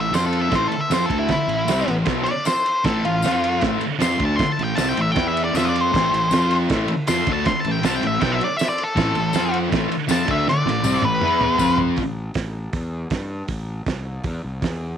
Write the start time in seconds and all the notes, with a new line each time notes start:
Already playing: A1
0.00 E5
0.11 F2 F3 C4 F4 C5, snare, ride, tambourine
0.16 F4
0.26 A4
0.33 ride
0.41 E5
0.49 A1 A2 E3 A3 C4 E4 A4, kick, snare, ride
0.55 C5
0.67 A4, muted distorted electric guitar stroke
0.72 muted fingered electric bass stroke, ride
0.81 E5
0.87 F2 C4 E4 A4
0.91 F3 C4 F4 C5, snare, ride, tambourine
1.06 D3 A4
1.10 D2 A3 D4, kick, ride
1.19 E4
1.25 C4 E4 A4, ride
1.29 muted distorted electric guitar stroke, muted fingered electric bass stroke, kick, snare
1.47 A1 A2 E3, ride
1.66 C2 C3 G3 C4 E4 G4, snare, ride, tambourine
1.86 A1 A2 E3, ride
2.04 B1 B2 F#3 B3 C4 E4 A4, kick, snare, ride
2.24 D5, ride
2.45 C4 E4 A4 C5, snare, ride, tambourine
2.66 ride
2.83 A1 A2 E3 A3 C4 E4 A4, kick, snare, ride
3.04 A1 A2 E3 F4, ride
3.21 F2 F3 C4 F4 C5, ride, tambourine
3.26 F4, snare
3.44 ride
3.60 A1 A2 E3 A3 C4 E4 A4, kick, snare, ride
3.78 muted distorted electric guitar stroke, muted fingered electric bass stroke, ride
3.99 F2 F3 C4 E4 F4 A4 C6, snare, ride, tambourine
4.18 D2 D3 A3 D4, kick, ride
4.25 A5
4.35 C4 E4 A4 C6, muted distorted electric guitar stroke, muted fingered electric bass stroke, ride
4.39 kick, snare
4.52 A5
4.59 A1 A2 E3, ride
4.64 G5
4.75 C2 C3 G3 C4 E4 A4 A5, snare, ride, tambourine
4.89 G5
4.97 A1 A2 E3, ride
5.01 E5
5.11 G5
5.15 E2 E3 B3 E4, kick, snare, ride
5.19 B4
5.28 E5
5.37 ride
5.44 D5
5.51 F2 F3 C4 F4 C5, tambourine
5.55 E5, snare, ride
5.65 D5
5.76 ride
5.81 C5
5.89 A2 E3 A3 C4 E4 A4
5.94 A1, kick, snare, crash
6.12 A1 A2 E3, ride
6.31 F2 F3 C4 F4, snare, ride, tambourine
6.35 C5
6.51 ride
6.69 A1 A2 E3 A3 E4 A4, kick, snare, ride
6.73 C4
6.88 muted distorted electric guitar stroke, muted fingered electric bass stroke, ride
7.07 F2 F3 C4 F4 C6, snare, ride, tambourine
7.12 E4 A4
7.27 D2 D3 A3 D4, kick, ride
7.33 A5
7.44 C4 E4 B4 C6, muted fingered electric bass stroke, muted distorted electric guitar stroke, kick, snare, ride
7.60 A5
7.64 A1 A2 E3, ride
7.71 G5
7.82 C2 C3 G3 C4 E4 A4, snare, ride, tambourine
7.86 A5
7.96 G5
8.03 A1 A2 E3, ride
8.07 E5
8.20 B1 B2 F#3 B3 C4 E4 A4 G5, kick, snare, ride
8.32 E5
8.41 D5, ride
8.57 E5, ride, tambourine
8.61 C4 E4 A4, snare
8.69 D5
8.78 ride
8.83 A4
8.96 A1 A2 E3 A3 C4 E4 A4, kick, snare, ride
9.15 A1 A2 E3, ride
9.33 F2 F3 C4 F4, snare, ride, tambourine
9.37 C4 C5
9.54 ride
9.69 A1 A2 E3 A3, kick, ride
9.74 C4 E4 A4, snare
9.89 muted distorted electric guitar stroke, muted fingered electric bass stroke, ride
10.08 F2 F3 C4 F4 A5, snare, ride, tambourine
10.12 C4 E4 A4
10.27 D2 D3 A3 D4, kick, ride
10.31 E5
10.47 C4 E4 D5, muted fingered electric bass stroke, muted distorted electric guitar stroke, snare
10.52 A4
10.66 A1 A2 E3, snare
10.83 C2 C3 G3 C4 E4 A4, high tom, tambourine
11.02 A1 A2 E3 B4, high tom
11.21 E2 E3 B3 E4 B4, mid tom
11.41 mid tom
11.58 F2 F3 C4 F4 C5 C6, floor tom, tambourine
11.78 floor tom
11.97 A1, kick, open hi-hat
12.34 A1, kick, snare, open hi-hat
12.73 E2, kick, open hi-hat
13.10 G2, kick, snare, open hi-hat
13.48 A1, kick, open hi-hat
13.86 C2, kick, snare, open hi-hat
14.24 E2, kick, open hi-hat
14.44 C2
14.62 E2, kick, snare, open hi-hat